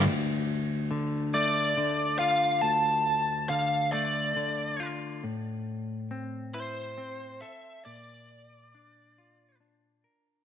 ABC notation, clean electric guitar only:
X:1
M:6/8
L:1/8
Q:3/8=46
K:Dm
V:1 name="Clean electric guitar"
D,,2 D, A, D, F | D,,2 D, A, D, F | A,,2 C E C A | B,,2 D F D B |]